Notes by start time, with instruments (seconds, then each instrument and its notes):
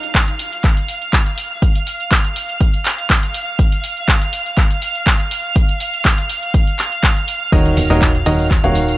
Already playing: violin section F5 F6
0.03 closed hi-hat
0.15 kick, clap, closed hi-hat
0.28 closed hi-hat
0.39 open hi-hat
0.53 closed hi-hat
0.64 kick, clap, closed hi-hat
0.77 closed hi-hat
0.88 open hi-hat
1.02 closed hi-hat
1.13 kick, clap, closed hi-hat
1.26 closed hi-hat
1.38 open hi-hat
1.62 kick, closed hi-hat
1.75 closed hi-hat
1.87 open hi-hat
2.00 closed hi-hat
2.11 kick, clap, closed hi-hat
2.25 closed hi-hat
2.36 open hi-hat
2.49 closed hi-hat
2.61 kick, closed hi-hat
2.74 closed hi-hat
2.85 clap, open hi-hat
2.98 closed hi-hat
3.10 kick, clap, closed hi-hat
3.23 closed hi-hat
3.34 open hi-hat
3.59 kick, closed hi-hat
3.72 closed hi-hat
3.84 open hi-hat
3.97 closed hi-hat
4.08 kick, clap, closed hi-hat
4.22 closed hi-hat
4.33 open hi-hat
4.46 closed hi-hat
4.57 kick, clap, closed hi-hat
4.71 closed hi-hat
4.82 open hi-hat
4.95 closed hi-hat
5.07 kick, clap, closed hi-hat
5.20 closed hi-hat
5.31 open hi-hat
5.56 kick, closed hi-hat
5.69 closed hi-hat
5.80 open hi-hat
5.94 closed hi-hat
6.05 kick, clap, closed hi-hat
6.18 closed hi-hat
6.30 open hi-hat
6.43 closed hi-hat
6.54 kick, closed hi-hat
6.67 closed hi-hat
6.79 clap, open hi-hat
6.92 closed hi-hat
7.03 kick, clap, closed hi-hat
7.17 closed hi-hat
7.28 open hi-hat
7.52 analog synth bass D#1, grand piano D#3 F#4 A#4 C#5 D#5, kick, closed hi-hat, tambourine
7.66 closed hi-hat
7.77 open hi-hat, tambourine, high conga
7.90 analog synth bass D#1, grand piano D#3 F#4 A#4 C#5 D#5, closed hi-hat, tambourine
8.02 kick, clap, closed hi-hat, tambourine
8.15 closed hi-hat
8.26 analog synth bass D#1, grand piano D#3 F#4 A#4 C#5 D#5, open hi-hat, tambourine, high conga
8.39 closed hi-hat, tambourine
8.51 kick, clap, closed hi-hat, tambourine
8.64 analog synth bass D#1, grand piano D#3 F#4 A#4 C#5 F5, closed hi-hat, high conga
8.75 open hi-hat, tambourine
8.88 closed hi-hat, tambourine